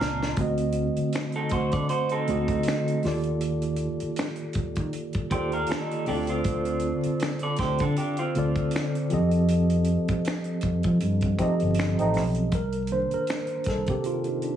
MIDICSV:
0, 0, Header, 1, 7, 480
1, 0, Start_track
1, 0, Tempo, 759494
1, 235, Time_signature, 4, 2, 24, 8
1, 9204, End_track
2, 0, Start_track
2, 0, Title_t, "Clean electric guitar"
2, 0, Program_c, 0, 27
2, 0, Note_on_c, 0, 65, 55
2, 0, Note_on_c, 0, 70, 62
2, 220, Note_off_c, 0, 70, 0
2, 224, Note_off_c, 0, 65, 0
2, 858, Note_on_c, 0, 69, 70
2, 860, Note_on_c, 0, 63, 56
2, 954, Note_off_c, 0, 69, 0
2, 955, Note_off_c, 0, 63, 0
2, 961, Note_on_c, 0, 72, 83
2, 966, Note_on_c, 0, 66, 72
2, 1086, Note_off_c, 0, 72, 0
2, 1089, Note_off_c, 0, 66, 0
2, 1093, Note_on_c, 0, 74, 77
2, 1096, Note_on_c, 0, 69, 61
2, 1191, Note_off_c, 0, 74, 0
2, 1193, Note_off_c, 0, 69, 0
2, 1198, Note_on_c, 0, 72, 75
2, 1202, Note_on_c, 0, 66, 52
2, 1325, Note_off_c, 0, 72, 0
2, 1327, Note_off_c, 0, 66, 0
2, 1338, Note_on_c, 0, 63, 60
2, 1340, Note_on_c, 0, 69, 64
2, 1893, Note_off_c, 0, 69, 0
2, 1894, Note_off_c, 0, 63, 0
2, 3361, Note_on_c, 0, 67, 64
2, 3363, Note_on_c, 0, 72, 66
2, 3486, Note_off_c, 0, 72, 0
2, 3488, Note_off_c, 0, 67, 0
2, 3496, Note_on_c, 0, 70, 73
2, 3501, Note_on_c, 0, 65, 69
2, 3593, Note_off_c, 0, 70, 0
2, 3595, Note_off_c, 0, 65, 0
2, 3602, Note_on_c, 0, 69, 76
2, 3607, Note_on_c, 0, 63, 71
2, 3827, Note_off_c, 0, 69, 0
2, 3829, Note_off_c, 0, 63, 0
2, 3842, Note_on_c, 0, 67, 89
2, 3845, Note_on_c, 0, 62, 73
2, 3967, Note_off_c, 0, 67, 0
2, 3969, Note_off_c, 0, 62, 0
2, 3977, Note_on_c, 0, 65, 68
2, 3981, Note_on_c, 0, 60, 62
2, 4668, Note_off_c, 0, 65, 0
2, 4670, Note_off_c, 0, 60, 0
2, 4696, Note_on_c, 0, 74, 64
2, 4700, Note_on_c, 0, 69, 57
2, 4793, Note_off_c, 0, 74, 0
2, 4795, Note_off_c, 0, 69, 0
2, 4799, Note_on_c, 0, 72, 80
2, 4802, Note_on_c, 0, 67, 72
2, 4925, Note_off_c, 0, 72, 0
2, 4927, Note_off_c, 0, 67, 0
2, 4936, Note_on_c, 0, 69, 73
2, 4941, Note_on_c, 0, 62, 70
2, 5033, Note_off_c, 0, 69, 0
2, 5035, Note_off_c, 0, 62, 0
2, 5042, Note_on_c, 0, 67, 75
2, 5045, Note_on_c, 0, 62, 55
2, 5167, Note_off_c, 0, 67, 0
2, 5169, Note_off_c, 0, 62, 0
2, 5174, Note_on_c, 0, 65, 73
2, 5178, Note_on_c, 0, 60, 61
2, 5732, Note_off_c, 0, 65, 0
2, 5734, Note_off_c, 0, 60, 0
2, 9204, End_track
3, 0, Start_track
3, 0, Title_t, "Tine electric piano"
3, 0, Program_c, 1, 4
3, 0, Control_c, 1, 64, 127
3, 0, Note_on_c, 1, 46, 69
3, 0, Note_on_c, 1, 58, 67
3, 0, Note_on_c, 1, 60, 72
3, 0, Note_on_c, 1, 74, 77
3, 0, Note_on_c, 1, 81, 71
3, 151, Note_off_c, 1, 46, 0
3, 153, Note_off_c, 1, 58, 0
3, 156, Note_off_c, 1, 60, 0
3, 159, Note_off_c, 1, 81, 0
3, 183, Note_off_c, 1, 74, 0
3, 235, Note_on_c, 1, 50, 75
3, 242, Note_on_c, 1, 57, 65
3, 245, Control_c, 1, 64, 0
3, 249, Note_on_c, 1, 60, 73
3, 253, Note_on_c, 1, 66, 73
3, 258, Note_on_c, 1, 75, 79
3, 344, Control_c, 1, 64, 127
3, 1008, Note_off_c, 1, 50, 0
3, 1011, Note_off_c, 1, 57, 0
3, 1015, Note_off_c, 1, 60, 0
3, 1017, Note_off_c, 1, 66, 0
3, 1020, Note_off_c, 1, 75, 0
3, 1436, Note_on_c, 1, 50, 77
3, 1442, Note_on_c, 1, 57, 74
3, 1447, Note_on_c, 1, 60, 70
3, 1452, Note_on_c, 1, 66, 77
3, 1459, Note_on_c, 1, 75, 83
3, 1916, Note_off_c, 1, 50, 0
3, 1917, Note_on_c, 1, 51, 82
3, 1919, Note_off_c, 1, 57, 0
3, 1921, Note_off_c, 1, 60, 0
3, 1921, Note_on_c, 1, 58, 74
3, 1922, Control_c, 1, 64, 0
3, 1924, Note_off_c, 1, 66, 0
3, 1927, Note_off_c, 1, 75, 0
3, 1927, Note_on_c, 1, 65, 81
3, 1931, Note_on_c, 1, 67, 70
3, 1935, Note_on_c, 1, 69, 75
3, 1940, Note_on_c, 1, 74, 91
3, 2043, Control_c, 1, 64, 127
3, 2690, Note_off_c, 1, 51, 0
3, 2692, Note_off_c, 1, 58, 0
3, 2695, Note_off_c, 1, 65, 0
3, 2697, Note_off_c, 1, 67, 0
3, 2699, Note_off_c, 1, 69, 0
3, 2702, Note_off_c, 1, 74, 0
3, 3355, Note_on_c, 1, 51, 74
3, 3359, Note_on_c, 1, 58, 74
3, 3364, Note_on_c, 1, 65, 71
3, 3369, Note_on_c, 1, 67, 73
3, 3373, Note_on_c, 1, 69, 72
3, 3379, Note_on_c, 1, 74, 84
3, 3831, Note_on_c, 1, 50, 83
3, 3835, Note_off_c, 1, 51, 0
3, 3837, Note_off_c, 1, 58, 0
3, 3838, Note_on_c, 1, 60, 78
3, 3840, Note_off_c, 1, 65, 0
3, 3841, Note_off_c, 1, 69, 0
3, 3842, Note_off_c, 1, 67, 0
3, 3842, Note_on_c, 1, 64, 55
3, 3843, Control_c, 1, 64, 0
3, 3847, Note_off_c, 1, 74, 0
3, 3848, Note_on_c, 1, 69, 73
3, 3855, Note_on_c, 1, 74, 90
3, 3885, Note_off_c, 1, 64, 0
3, 3885, Note_on_c, 1, 65, 70
3, 3948, Control_c, 1, 64, 127
3, 4607, Note_off_c, 1, 50, 0
3, 4610, Note_off_c, 1, 60, 0
3, 4616, Note_off_c, 1, 69, 0
3, 4619, Note_off_c, 1, 74, 0
3, 4634, Note_off_c, 1, 65, 0
3, 5276, Note_on_c, 1, 50, 74
3, 5282, Note_on_c, 1, 60, 76
3, 5288, Note_on_c, 1, 65, 64
3, 5293, Note_on_c, 1, 69, 71
3, 5299, Note_on_c, 1, 74, 93
3, 5751, Note_off_c, 1, 60, 0
3, 5753, Note_on_c, 1, 53, 89
3, 5755, Note_off_c, 1, 50, 0
3, 5758, Note_on_c, 1, 60, 75
3, 5761, Note_off_c, 1, 65, 0
3, 5762, Control_c, 1, 64, 0
3, 5764, Note_off_c, 1, 69, 0
3, 5764, Note_on_c, 1, 67, 77
3, 5767, Note_off_c, 1, 74, 0
3, 5770, Note_on_c, 1, 69, 74
3, 5775, Note_on_c, 1, 75, 91
3, 5860, Control_c, 1, 64, 127
3, 6528, Note_off_c, 1, 53, 0
3, 6531, Note_off_c, 1, 60, 0
3, 6533, Note_off_c, 1, 67, 0
3, 6537, Note_off_c, 1, 69, 0
3, 6539, Note_off_c, 1, 75, 0
3, 7194, Note_on_c, 1, 53, 74
3, 7200, Note_on_c, 1, 60, 77
3, 7206, Note_on_c, 1, 67, 71
3, 7211, Note_on_c, 1, 69, 68
3, 7217, Note_on_c, 1, 75, 88
3, 7782, Note_off_c, 1, 53, 0
3, 7785, Note_off_c, 1, 60, 0
3, 7788, Note_off_c, 1, 67, 0
3, 7790, Note_off_c, 1, 69, 0
3, 7793, Note_off_c, 1, 75, 0
3, 7923, Control_c, 1, 64, 0
3, 7931, Note_on_c, 1, 70, 100
3, 8035, Control_c, 1, 64, 127
3, 8160, Note_on_c, 1, 51, 50
3, 8162, Note_on_c, 1, 58, 52
3, 8167, Note_on_c, 1, 62, 56
3, 8167, Note_on_c, 1, 72, 94
3, 8170, Note_off_c, 1, 70, 0
3, 8300, Note_off_c, 1, 72, 0
3, 8304, Note_on_c, 1, 70, 90
3, 8648, Note_on_c, 1, 69, 98
3, 8652, Note_off_c, 1, 70, 0
3, 8768, Note_off_c, 1, 69, 0
3, 8783, Note_on_c, 1, 67, 89
3, 8875, Note_off_c, 1, 67, 0
3, 8886, Note_on_c, 1, 65, 79
3, 9019, Note_off_c, 1, 65, 0
3, 9021, Note_on_c, 1, 63, 69
3, 9119, Note_off_c, 1, 62, 0
3, 9123, Note_off_c, 1, 63, 0
3, 9126, Note_on_c, 1, 62, 68
3, 9204, Note_off_c, 1, 51, 0
3, 9204, Note_off_c, 1, 58, 0
3, 9204, Note_off_c, 1, 62, 0
3, 9204, End_track
4, 0, Start_track
4, 0, Title_t, "Trombone section"
4, 0, Program_c, 2, 61
4, 7195, Note_on_c, 2, 57, 70
4, 7195, Note_on_c, 2, 60, 70
4, 7195, Note_on_c, 2, 63, 70
4, 7296, Note_off_c, 2, 57, 0
4, 7296, Note_off_c, 2, 60, 0
4, 7296, Note_off_c, 2, 63, 0
4, 7570, Note_on_c, 2, 60, 74
4, 7571, Note_on_c, 2, 57, 75
4, 7571, Note_on_c, 2, 63, 86
4, 7724, Note_off_c, 2, 57, 0
4, 7724, Note_off_c, 2, 60, 0
4, 7724, Note_off_c, 2, 63, 0
4, 9204, End_track
5, 0, Start_track
5, 0, Title_t, "Fingered electric bass"
5, 0, Program_c, 3, 33
5, 2, Note_on_c, 3, 37, 74
5, 204, Note_off_c, 3, 37, 0
5, 241, Note_on_c, 3, 38, 98
5, 559, Note_off_c, 3, 38, 0
5, 963, Note_on_c, 3, 38, 86
5, 1075, Note_off_c, 3, 38, 0
5, 1097, Note_on_c, 3, 50, 92
5, 1184, Note_off_c, 3, 50, 0
5, 1448, Note_on_c, 3, 38, 94
5, 1648, Note_off_c, 3, 38, 0
5, 1925, Note_on_c, 3, 39, 85
5, 2447, Note_off_c, 3, 39, 0
5, 2882, Note_on_c, 3, 39, 89
5, 2994, Note_off_c, 3, 39, 0
5, 3017, Note_on_c, 3, 51, 97
5, 3104, Note_off_c, 3, 51, 0
5, 3360, Note_on_c, 3, 39, 92
5, 3563, Note_off_c, 3, 39, 0
5, 3847, Note_on_c, 3, 38, 90
5, 4367, Note_off_c, 3, 38, 0
5, 4802, Note_on_c, 3, 38, 89
5, 4914, Note_off_c, 3, 38, 0
5, 4937, Note_on_c, 3, 50, 93
5, 5024, Note_off_c, 3, 50, 0
5, 5286, Note_on_c, 3, 38, 98
5, 5487, Note_off_c, 3, 38, 0
5, 5768, Note_on_c, 3, 41, 91
5, 6288, Note_off_c, 3, 41, 0
5, 6723, Note_on_c, 3, 41, 81
5, 6835, Note_off_c, 3, 41, 0
5, 6859, Note_on_c, 3, 53, 97
5, 6945, Note_off_c, 3, 53, 0
5, 6967, Note_on_c, 3, 43, 80
5, 7167, Note_off_c, 3, 43, 0
5, 7344, Note_on_c, 3, 31, 91
5, 7543, Note_off_c, 3, 31, 0
5, 7583, Note_on_c, 3, 33, 84
5, 7688, Note_off_c, 3, 33, 0
5, 7688, Note_on_c, 3, 35, 75
5, 7887, Note_off_c, 3, 35, 0
5, 7919, Note_on_c, 3, 36, 97
5, 8238, Note_off_c, 3, 36, 0
5, 8641, Note_on_c, 3, 36, 72
5, 8754, Note_off_c, 3, 36, 0
5, 8775, Note_on_c, 3, 48, 87
5, 9204, Note_off_c, 3, 48, 0
5, 9204, End_track
6, 0, Start_track
6, 0, Title_t, "Muted fingered electric bass strokes"
6, 621, Note_on_c, 9, 29, 43
6, 684, Note_off_c, 9, 29, 0
6, 2542, Note_on_c, 9, 29, 52
6, 2605, Note_off_c, 9, 29, 0
6, 4461, Note_on_c, 9, 29, 50
6, 4525, Note_off_c, 9, 29, 0
6, 6381, Note_on_c, 9, 29, 47
6, 6445, Note_off_c, 9, 29, 0
6, 7202, Note_on_c, 9, 29, 48
6, 7265, Note_off_c, 9, 29, 0
6, 8303, Note_on_c, 9, 29, 44
6, 8366, Note_off_c, 9, 29, 0
6, 9204, End_track
7, 0, Start_track
7, 0, Title_t, "Drums"
7, 8, Note_on_c, 9, 38, 88
7, 71, Note_off_c, 9, 38, 0
7, 143, Note_on_c, 9, 38, 76
7, 206, Note_off_c, 9, 38, 0
7, 230, Note_on_c, 9, 42, 87
7, 235, Note_on_c, 9, 36, 104
7, 293, Note_off_c, 9, 42, 0
7, 298, Note_off_c, 9, 36, 0
7, 363, Note_on_c, 9, 42, 47
7, 426, Note_off_c, 9, 42, 0
7, 457, Note_on_c, 9, 42, 60
7, 520, Note_off_c, 9, 42, 0
7, 609, Note_on_c, 9, 42, 43
7, 672, Note_off_c, 9, 42, 0
7, 710, Note_on_c, 9, 42, 81
7, 729, Note_on_c, 9, 38, 92
7, 731, Note_on_c, 9, 26, 84
7, 773, Note_off_c, 9, 42, 0
7, 792, Note_off_c, 9, 38, 0
7, 794, Note_off_c, 9, 26, 0
7, 834, Note_on_c, 9, 42, 42
7, 898, Note_off_c, 9, 42, 0
7, 943, Note_on_c, 9, 42, 72
7, 957, Note_on_c, 9, 36, 93
7, 1006, Note_off_c, 9, 42, 0
7, 1020, Note_off_c, 9, 36, 0
7, 1084, Note_on_c, 9, 42, 46
7, 1092, Note_on_c, 9, 36, 102
7, 1147, Note_off_c, 9, 42, 0
7, 1155, Note_off_c, 9, 36, 0
7, 1194, Note_on_c, 9, 42, 70
7, 1258, Note_off_c, 9, 42, 0
7, 1322, Note_on_c, 9, 42, 41
7, 1386, Note_off_c, 9, 42, 0
7, 1438, Note_on_c, 9, 42, 62
7, 1501, Note_off_c, 9, 42, 0
7, 1568, Note_on_c, 9, 36, 84
7, 1570, Note_on_c, 9, 42, 39
7, 1631, Note_off_c, 9, 36, 0
7, 1633, Note_off_c, 9, 42, 0
7, 1662, Note_on_c, 9, 42, 76
7, 1694, Note_on_c, 9, 38, 90
7, 1696, Note_on_c, 9, 26, 65
7, 1726, Note_off_c, 9, 42, 0
7, 1757, Note_off_c, 9, 38, 0
7, 1760, Note_off_c, 9, 26, 0
7, 1817, Note_on_c, 9, 42, 44
7, 1880, Note_off_c, 9, 42, 0
7, 1912, Note_on_c, 9, 46, 46
7, 1928, Note_on_c, 9, 38, 37
7, 1975, Note_off_c, 9, 46, 0
7, 1992, Note_off_c, 9, 38, 0
7, 2044, Note_on_c, 9, 42, 46
7, 2107, Note_off_c, 9, 42, 0
7, 2153, Note_on_c, 9, 42, 80
7, 2216, Note_off_c, 9, 42, 0
7, 2286, Note_on_c, 9, 42, 47
7, 2349, Note_off_c, 9, 42, 0
7, 2378, Note_on_c, 9, 42, 58
7, 2441, Note_off_c, 9, 42, 0
7, 2528, Note_on_c, 9, 42, 45
7, 2591, Note_off_c, 9, 42, 0
7, 2630, Note_on_c, 9, 42, 83
7, 2649, Note_on_c, 9, 38, 102
7, 2651, Note_on_c, 9, 26, 79
7, 2693, Note_off_c, 9, 42, 0
7, 2712, Note_off_c, 9, 38, 0
7, 2714, Note_off_c, 9, 26, 0
7, 2753, Note_on_c, 9, 42, 47
7, 2816, Note_off_c, 9, 42, 0
7, 2863, Note_on_c, 9, 42, 75
7, 2876, Note_on_c, 9, 36, 83
7, 2926, Note_off_c, 9, 42, 0
7, 2940, Note_off_c, 9, 36, 0
7, 3004, Note_on_c, 9, 42, 45
7, 3012, Note_on_c, 9, 36, 95
7, 3067, Note_off_c, 9, 42, 0
7, 3075, Note_off_c, 9, 36, 0
7, 3114, Note_on_c, 9, 42, 70
7, 3177, Note_off_c, 9, 42, 0
7, 3241, Note_on_c, 9, 42, 41
7, 3253, Note_on_c, 9, 36, 75
7, 3304, Note_off_c, 9, 42, 0
7, 3316, Note_off_c, 9, 36, 0
7, 3355, Note_on_c, 9, 36, 88
7, 3355, Note_on_c, 9, 42, 62
7, 3418, Note_off_c, 9, 36, 0
7, 3418, Note_off_c, 9, 42, 0
7, 3488, Note_on_c, 9, 42, 39
7, 3551, Note_off_c, 9, 42, 0
7, 3581, Note_on_c, 9, 42, 75
7, 3612, Note_on_c, 9, 38, 91
7, 3614, Note_on_c, 9, 26, 70
7, 3644, Note_off_c, 9, 42, 0
7, 3675, Note_off_c, 9, 38, 0
7, 3678, Note_off_c, 9, 26, 0
7, 3737, Note_on_c, 9, 42, 46
7, 3800, Note_off_c, 9, 42, 0
7, 3830, Note_on_c, 9, 46, 44
7, 3893, Note_off_c, 9, 46, 0
7, 3962, Note_on_c, 9, 42, 55
7, 4025, Note_off_c, 9, 42, 0
7, 4070, Note_on_c, 9, 42, 78
7, 4074, Note_on_c, 9, 36, 108
7, 4133, Note_off_c, 9, 42, 0
7, 4137, Note_off_c, 9, 36, 0
7, 4202, Note_on_c, 9, 42, 45
7, 4265, Note_off_c, 9, 42, 0
7, 4293, Note_on_c, 9, 42, 60
7, 4357, Note_off_c, 9, 42, 0
7, 4445, Note_on_c, 9, 42, 46
7, 4508, Note_off_c, 9, 42, 0
7, 4548, Note_on_c, 9, 42, 76
7, 4567, Note_on_c, 9, 38, 103
7, 4569, Note_on_c, 9, 26, 76
7, 4611, Note_off_c, 9, 42, 0
7, 4630, Note_off_c, 9, 38, 0
7, 4632, Note_off_c, 9, 26, 0
7, 4671, Note_on_c, 9, 42, 45
7, 4735, Note_off_c, 9, 42, 0
7, 4780, Note_on_c, 9, 42, 69
7, 4795, Note_on_c, 9, 36, 90
7, 4809, Note_on_c, 9, 38, 38
7, 4843, Note_off_c, 9, 42, 0
7, 4859, Note_off_c, 9, 36, 0
7, 4872, Note_off_c, 9, 38, 0
7, 4919, Note_on_c, 9, 42, 49
7, 4931, Note_on_c, 9, 36, 96
7, 4982, Note_off_c, 9, 42, 0
7, 4994, Note_off_c, 9, 36, 0
7, 5033, Note_on_c, 9, 42, 71
7, 5096, Note_off_c, 9, 42, 0
7, 5161, Note_on_c, 9, 42, 51
7, 5224, Note_off_c, 9, 42, 0
7, 5276, Note_on_c, 9, 42, 62
7, 5339, Note_off_c, 9, 42, 0
7, 5407, Note_on_c, 9, 36, 81
7, 5409, Note_on_c, 9, 42, 34
7, 5470, Note_off_c, 9, 36, 0
7, 5472, Note_off_c, 9, 42, 0
7, 5503, Note_on_c, 9, 42, 78
7, 5535, Note_on_c, 9, 38, 87
7, 5537, Note_on_c, 9, 26, 70
7, 5567, Note_off_c, 9, 42, 0
7, 5598, Note_off_c, 9, 38, 0
7, 5601, Note_off_c, 9, 26, 0
7, 5657, Note_on_c, 9, 42, 46
7, 5720, Note_off_c, 9, 42, 0
7, 5751, Note_on_c, 9, 42, 65
7, 5814, Note_off_c, 9, 42, 0
7, 5885, Note_on_c, 9, 42, 51
7, 5948, Note_off_c, 9, 42, 0
7, 5994, Note_on_c, 9, 42, 78
7, 6057, Note_off_c, 9, 42, 0
7, 6128, Note_on_c, 9, 42, 50
7, 6191, Note_off_c, 9, 42, 0
7, 6221, Note_on_c, 9, 42, 61
7, 6284, Note_off_c, 9, 42, 0
7, 6371, Note_on_c, 9, 42, 43
7, 6375, Note_on_c, 9, 36, 97
7, 6434, Note_off_c, 9, 42, 0
7, 6438, Note_off_c, 9, 36, 0
7, 6475, Note_on_c, 9, 42, 88
7, 6494, Note_on_c, 9, 38, 101
7, 6496, Note_on_c, 9, 26, 84
7, 6538, Note_off_c, 9, 42, 0
7, 6557, Note_off_c, 9, 38, 0
7, 6559, Note_off_c, 9, 26, 0
7, 6597, Note_on_c, 9, 42, 45
7, 6661, Note_off_c, 9, 42, 0
7, 6705, Note_on_c, 9, 42, 76
7, 6718, Note_on_c, 9, 36, 86
7, 6768, Note_off_c, 9, 42, 0
7, 6781, Note_off_c, 9, 36, 0
7, 6845, Note_on_c, 9, 42, 46
7, 6853, Note_on_c, 9, 36, 106
7, 6908, Note_off_c, 9, 42, 0
7, 6916, Note_off_c, 9, 36, 0
7, 6955, Note_on_c, 9, 42, 71
7, 7018, Note_off_c, 9, 42, 0
7, 7083, Note_on_c, 9, 42, 41
7, 7094, Note_on_c, 9, 36, 83
7, 7147, Note_off_c, 9, 42, 0
7, 7158, Note_off_c, 9, 36, 0
7, 7196, Note_on_c, 9, 36, 83
7, 7196, Note_on_c, 9, 42, 59
7, 7259, Note_off_c, 9, 36, 0
7, 7259, Note_off_c, 9, 42, 0
7, 7329, Note_on_c, 9, 42, 37
7, 7392, Note_off_c, 9, 42, 0
7, 7421, Note_on_c, 9, 42, 74
7, 7453, Note_on_c, 9, 38, 82
7, 7455, Note_on_c, 9, 26, 76
7, 7484, Note_off_c, 9, 42, 0
7, 7516, Note_off_c, 9, 38, 0
7, 7518, Note_off_c, 9, 26, 0
7, 7575, Note_on_c, 9, 42, 45
7, 7638, Note_off_c, 9, 42, 0
7, 7670, Note_on_c, 9, 46, 45
7, 7687, Note_on_c, 9, 38, 39
7, 7733, Note_off_c, 9, 46, 0
7, 7750, Note_off_c, 9, 38, 0
7, 7801, Note_on_c, 9, 42, 47
7, 7865, Note_off_c, 9, 42, 0
7, 7910, Note_on_c, 9, 42, 82
7, 7914, Note_on_c, 9, 36, 111
7, 7973, Note_off_c, 9, 42, 0
7, 7977, Note_off_c, 9, 36, 0
7, 8041, Note_on_c, 9, 42, 45
7, 8105, Note_off_c, 9, 42, 0
7, 8134, Note_on_c, 9, 42, 60
7, 8198, Note_off_c, 9, 42, 0
7, 8286, Note_on_c, 9, 42, 39
7, 8349, Note_off_c, 9, 42, 0
7, 8387, Note_on_c, 9, 42, 76
7, 8405, Note_on_c, 9, 38, 98
7, 8408, Note_on_c, 9, 26, 81
7, 8450, Note_off_c, 9, 42, 0
7, 8469, Note_off_c, 9, 38, 0
7, 8471, Note_off_c, 9, 26, 0
7, 8511, Note_on_c, 9, 42, 44
7, 8574, Note_off_c, 9, 42, 0
7, 8619, Note_on_c, 9, 42, 68
7, 8635, Note_on_c, 9, 36, 86
7, 8648, Note_on_c, 9, 38, 37
7, 8682, Note_off_c, 9, 42, 0
7, 8698, Note_off_c, 9, 36, 0
7, 8712, Note_off_c, 9, 38, 0
7, 8761, Note_on_c, 9, 42, 43
7, 8771, Note_on_c, 9, 36, 96
7, 8824, Note_off_c, 9, 42, 0
7, 8834, Note_off_c, 9, 36, 0
7, 8871, Note_on_c, 9, 42, 64
7, 8934, Note_off_c, 9, 42, 0
7, 8999, Note_on_c, 9, 42, 41
7, 9063, Note_off_c, 9, 42, 0
7, 9113, Note_on_c, 9, 42, 51
7, 9176, Note_off_c, 9, 42, 0
7, 9204, End_track
0, 0, End_of_file